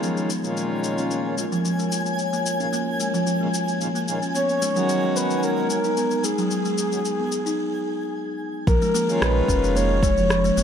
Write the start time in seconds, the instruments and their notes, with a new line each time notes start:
Already playing: harmonium D#3 G#3 C#4 F4
0.02 kalimba F3, ambient pad A#3 F4 A#4 C#5, synth texture G#5, cabasa
0.17 kalimba G#3, cabasa
0.30 cabasa
0.42 harmonium A#2 D#3 G#3 C#4 F4, cabasa
0.57 cabasa
0.71 kalimba A#3
0.84 cabasa
0.98 kalimba C#4, cabasa
1.11 kalimba A#3, cabasa
1.37 harmonium A#2 D#3 G#3 C#4 F4, kalimba G#3, cabasa
1.52 kalimba F3, cabasa
1.65 kalimba F3, cabasa
1.79 kalimba G#3, cabasa
1.92 cabasa
2.06 cabasa
2.19 cabasa
2.33 kalimba A#3, cabasa
2.46 cabasa
2.59 harmonium A#2 D#3 G#3 C#4 F4, kalimba C#4, cabasa
2.73 kalimba A#3, cabasa
3.00 kalimba G#3, cabasa
3.14 kalimba F3, cabasa
3.26 kalimba F3, cabasa
3.40 harmonium A#2 D#3 G#3 C#4 F4, kalimba G#3
3.54 cabasa
3.68 cabasa
3.79 harmonium A#2 D#3 G#3 C#4 F4, cabasa
3.95 kalimba A#3, cabasa
4.06 harmonium A#2 D#3 G#3 C#4 F4, cabasa
4.22 kalimba C#4, cabasa
4.35 ambient pad G#3 B3 D#4 A#4, kalimba B3, soft synth lead C#5, cabasa
4.49 cabasa
4.62 kalimba G#3, cabasa
4.73 harmonium D#3 G#3 C#4, kalimba F#3, cabasa
4.77 harmonium F#4
4.89 kalimba F#3, cabasa
5.04 kalimba G#3
5.16 soft synth lead B4, cabasa
5.30 cabasa
5.43 soft synth lead A#4, cabasa
5.58 kalimba B3
5.68 harmonium D#3 G#3 C#4 F#4, cabasa
5.84 kalimba D#4, cabasa
5.97 kalimba B3, cabasa
6.11 cabasa
6.24 kalimba G#3, soft synth lead G#4, cabasa
6.38 kalimba F#3, cabasa
6.51 kalimba F#3, cabasa
6.65 kalimba G#3, cabasa
6.78 cabasa
6.92 harmonium D#3 G#3 C#4 F#4, cabasa
7.05 cabasa
7.20 kalimba B3
7.32 cabasa
7.46 kalimba D#4, cabasa
8.67 sub bass A#1, ambient pad A#2 G#3 C#4, kalimba F3, soft synth lead A#4, kick, cabasa
8.82 kalimba G#3, cabasa
8.94 kalimba A#3, cabasa
9.06 harmonium D#3 G#3 C#4, cabasa
9.11 harmonium F4
9.21 sub bass A#1, soft synth lead B4, cross-stick, cabasa
9.48 sub bass F1, kalimba C#4, kick, cabasa
9.64 cabasa
9.76 kalimba A#3, soft synth lead C#5, cabasa
10.02 harmonium D#3 G#3 C#4 F4, kalimba G#3, kick, cabasa
10.17 kalimba F3, cabasa
10.30 kalimba F3, cross-stick, cabasa
10.44 kalimba G#3, cabasa
10.57 sub bass F1, kalimba A#3, cabasa